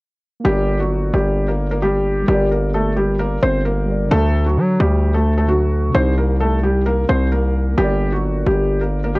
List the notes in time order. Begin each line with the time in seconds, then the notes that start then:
0.40 A#3 D4
0.45 G1 G3 G4 A#4
0.51 D5
0.79 F#3 F#4
1.14 G1 G3 G4
1.48 A#3 A#4
1.71 A#3 A#4
1.82 G3 G4
2.23 G3 G4
2.28 G1 G3 G4 A#4
2.34 D5
2.51 A#3 A#4
2.74 A3 A4
2.96 G3 G4
3.19 A#3 A#4
3.43 G1 C4 C5
3.65 A#3 A#4
3.86 G3 G4 A#4
3.91 D5
4.06 D3 D4
4.11 D2 A3 A4
4.17 A4
4.46 F#3 F#4
4.57 F#3
4.80 D2 G3 G4
5.14 A3 A4
5.38 A3 A4
5.46 D3 F#3 D4 F#4
5.52 A4
5.88 C3 C4
5.95 C2 C4 D#4 C5
6.00 G4
6.18 A#3 A#4
6.41 A3 A4
6.63 G3 G4
6.86 A#3 A#4
7.09 C2 C4 C5
7.32 A#3 A#4
7.73 A#3 D4
7.78 G1 G3 G4 A#4
7.84 D5
8.12 F#3 F#4
8.46 G1 G3 G4
8.81 A#3 A#4
9.04 A#3 A#4
9.15 G3 G4